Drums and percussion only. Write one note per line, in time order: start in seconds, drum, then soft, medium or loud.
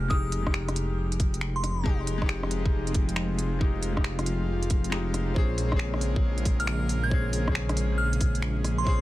0.11 kick loud
0.32 closed hi-hat medium
0.47 kick medium
0.47 cross-stick medium
0.54 finger snap loud
0.68 cross-stick medium
0.68 closed hi-hat soft
0.76 closed hi-hat medium
1.12 closed hi-hat soft
1.20 kick loud
1.20 closed hi-hat medium
1.34 closed hi-hat soft
1.41 finger snap loud
1.64 cross-stick soft
1.64 closed hi-hat medium
1.86 kick loud
2.07 closed hi-hat medium
2.22 kick medium
2.22 cross-stick medium
2.29 finger snap loud
2.43 cross-stick medium
2.51 closed hi-hat medium
2.66 kick loud
2.87 closed hi-hat soft
2.95 kick loud
2.95 closed hi-hat medium
3.09 closed hi-hat soft
3.16 finger snap loud
3.39 closed hi-hat medium
3.61 kick loud
3.83 closed hi-hat medium
3.97 kick medium
3.97 cross-stick medium
4.04 finger snap loud
4.19 cross-stick medium
4.19 closed hi-hat soft
4.26 closed hi-hat medium
4.63 closed hi-hat soft
4.70 kick loud
4.70 closed hi-hat medium
4.84 closed hi-hat soft
4.92 finger snap loud
5.14 cross-stick soft
5.14 closed hi-hat medium
5.36 kick loud
5.58 open hi-hat medium
5.72 kick medium
5.72 cross-stick medium
5.79 finger snap loud
5.94 cross-stick medium
6.01 open hi-hat medium
6.16 kick loud
6.38 closed hi-hat soft
6.45 kick loud
6.45 open hi-hat medium
6.60 closed hi-hat soft
6.67 finger snap loud
6.89 open hi-hat medium
7.11 kick loud
7.33 open hi-hat medium
7.48 kick medium
7.48 cross-stick medium
7.55 finger snap loud
7.69 cross-stick medium
7.69 closed hi-hat soft
7.77 open hi-hat medium
8.13 closed hi-hat soft
8.21 kick medium
8.21 open hi-hat medium
8.35 closed hi-hat soft
8.43 finger snap loud
8.65 cross-stick soft
8.65 open hi-hat medium
8.87 kick loud